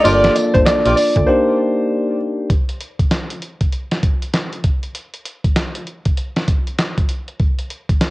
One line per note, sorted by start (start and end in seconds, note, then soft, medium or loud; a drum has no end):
0.04 0.29 G1 loud
0.04 1.24 A#3 medium
0.04 1.25 D4 medium
0.04 0.34 F4 loud
0.04 1.25 F4 medium
0.04 0.34 G4 medium
0.04 1.26 A4 medium
0.04 0.34 A#4 loud
0.04 0.56 D5 loud
0.04 0.34 D5 loud
0.04 closed hi-hat medium
0.04 tambourine medium
0.04 cowbell medium
0.24 snare medium
0.24 closed hi-hat medium
0.35 closed hi-hat medium
0.35 tambourine medium
0.35 cowbell medium
0.54 0.64 G1 medium
0.54 0.59 C5 medium
0.54 kick medium
0.54 closed hi-hat medium
0.65 0.94 D5 medium
0.65 snare loud
0.65 clap loud
0.65 closed hi-hat medium
0.65 tambourine loud
0.65 cowbell medium
0.85 0.95 A#1 loud
0.85 0.95 F4 medium
0.85 0.95 G4 medium
0.85 0.95 A#4 medium
0.85 0.96 D5 medium
0.85 closed hi-hat medium
0.96 1.28 D5 medium
0.96 open hi-hat medium
0.96 tambourine medium
1.16 1.25 D2 loud
1.16 kick medium
1.16 closed hi-hat medium
1.26 2.47 A#3 medium
1.26 2.47 D4 medium
1.26 2.48 D#4 medium
1.26 2.48 G4 medium
1.26 2.15 C5 medium
2.50 kick loud
2.50 closed hi-hat medium
2.69 closed hi-hat soft
2.81 closed hi-hat medium
2.99 kick medium
2.99 closed hi-hat soft
3.11 snare loud
3.11 clap medium
3.11 closed hi-hat medium
3.30 closed hi-hat medium
3.42 closed hi-hat medium
3.61 kick medium
3.61 closed hi-hat soft
3.72 closed hi-hat medium
3.91 snare medium
3.91 closed hi-hat soft
4.03 kick medium
4.03 closed hi-hat medium
4.22 closed hi-hat soft
4.34 snare loud
4.34 clap medium
4.34 closed hi-hat medium
4.53 closed hi-hat soft
4.64 kick medium
4.64 closed hi-hat medium
4.83 closed hi-hat soft
4.95 closed hi-hat medium
5.14 closed hi-hat medium
5.25 closed hi-hat medium
5.44 kick medium
5.44 closed hi-hat medium
5.56 snare loud
5.56 clap medium
5.56 closed hi-hat medium
5.75 closed hi-hat medium
5.87 closed hi-hat medium
6.05 kick medium
6.05 closed hi-hat soft
6.17 closed hi-hat medium
6.36 snare medium
6.36 closed hi-hat soft
6.48 kick loud
6.48 closed hi-hat medium
6.67 closed hi-hat soft
6.78 snare loud
6.78 clap medium
6.78 closed hi-hat medium
6.98 kick medium
6.98 closed hi-hat medium
7.09 closed hi-hat medium
7.28 closed hi-hat soft
7.39 kick loud
7.39 closed hi-hat medium
7.59 closed hi-hat medium
7.70 closed hi-hat medium
7.89 kick medium
7.89 closed hi-hat soft
8.01 snare loud
8.01 clap medium
8.01 closed hi-hat medium